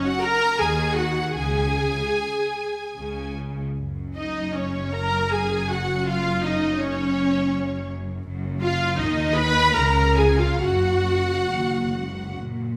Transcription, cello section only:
0.61 1.23 D#3 medium
1.35 2.03 C#3 medium
2.97 3.64 C#3 soft
3.78 8.23 F#2 medium
8.26 8.97 F#2 medium
8.99 9.77 D#3 medium
9.76 10.63 C#3 medium
10.62 11.43 F#2 medium
11.51 11.93 D#2 medium
11.96 12.40 C#2 soft
12.40 12.77 A#2 medium

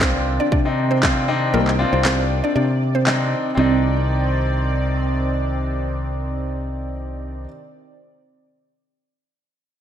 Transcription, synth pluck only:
0.01 0.12 C4 medium
0.01 0.12 C5 medium
0.40 0.50 D4 medium
0.40 0.49 D5 medium
0.52 0.63 D4 medium
0.52 0.62 D5 medium
0.91 1.11 C4 medium
0.91 1.10 C5 medium
1.54 1.64 A#3 medium
1.54 1.64 A#4 loud
1.93 2.02 C4 medium
1.93 2.02 C5 medium
2.05 2.16 C4 medium
2.05 2.15 C5 medium
2.44 2.53 D4 medium
2.44 2.53 D5 medium
2.56 2.66 D4 medium
2.56 2.66 D5 medium
2.95 3.14 C4 medium
2.95 3.14 C5 medium
3.58 5.06 C4 medium

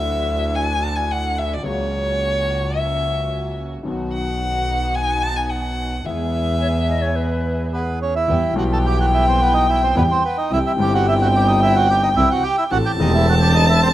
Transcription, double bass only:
0.00 1.55 D2 medium
1.65 3.75 C#2 medium
3.86 5.95 B1 medium
6.06 8.17 E2 medium
8.28 8.52 E2 medium
8.56 9.89 B1 loud
9.96 10.19 E2 medium
10.51 10.75 C2 medium
10.79 12.10 G1 loud
12.16 12.40 C2 medium
12.72 12.95 A1 medium
12.99 13.94 E1 loud

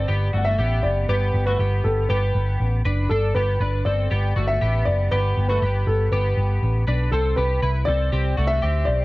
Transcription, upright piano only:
0.00 0.40 D5 medium
0.37 0.45 F#5 medium
0.45 0.84 E5 loud
0.83 1.07 D5 medium
1.09 1.44 B4 medium
1.46 1.85 B4 medium
1.84 2.08 A4 medium
2.09 2.56 B4 medium
3.09 3.36 A4 medium
3.35 3.87 B4 medium
3.85 4.50 D5 medium
4.48 4.87 E5 medium
4.85 5.12 D5 medium
5.11 5.47 B4 loud
5.49 5.84 B4 medium
5.87 6.13 A4 medium
6.12 6.58 B4 medium
7.11 7.38 A4 medium
7.36 7.88 B4 medium
7.85 8.45 D5 loud
8.47 8.88 E5 loud
8.85 9.05 D5 medium

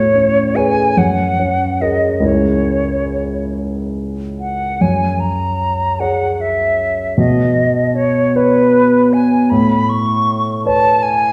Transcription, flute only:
0.00 0.57 C#5 medium
0.56 0.99 G#5 medium
0.98 1.83 F#5 medium
1.81 2.27 D#5 medium
2.25 3.55 C#5 soft
4.40 4.83 F#5 medium
4.81 5.21 G#5 medium
5.20 6.01 A#5 medium
6.00 6.42 F#5 medium
6.41 7.18 E5 medium
7.18 7.97 D#5 medium
7.95 8.38 C#5 medium
8.36 9.15 B4 medium
9.13 9.51 G#5 medium
9.50 9.91 B5 medium
9.89 10.65 C#6 medium
10.66 11.04 A5 medium
11.03 11.32 G#5 medium

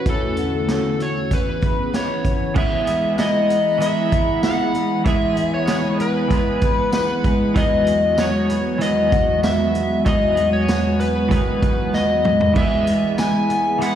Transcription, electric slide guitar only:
0.09 1.04 A4 medium
1.02 1.33 C#5 medium
1.33 2.22 B4 medium
1.95 2.57 C#5 medium
2.58 3.19 E5 medium
3.20 3.81 D#5 medium
3.82 4.44 E5 medium
4.45 5.06 F#5 medium
5.07 5.50 E5 medium
5.54 6.01 C#5 medium
6.01 6.93 B4 medium
6.94 7.58 B4 medium
7.57 8.21 D#5 medium
8.20 8.84 C#5 medium
8.82 9.44 D#5 loud
9.44 10.05 E5 medium
10.06 10.53 D#5 medium
10.53 11.01 C#5 loud
11.00 11.96 B4 loud
11.94 12.56 D#5 medium
12.57 13.15 E5 loud
13.20 13.78 G#5 loud
13.83 13.95 F#5 loud

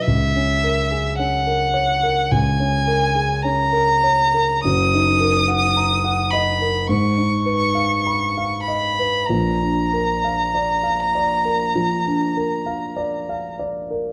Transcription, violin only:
0.02 1.17 E5 loud
1.18 2.33 F#5 loud
2.31 3.44 G#5 loud
3.42 4.63 A#5 loud
4.63 6.32 D#6 loud
6.31 6.88 B5 medium
6.87 8.62 C#6 loud
8.62 9.27 B5 medium
9.26 13.56 A#5 loud

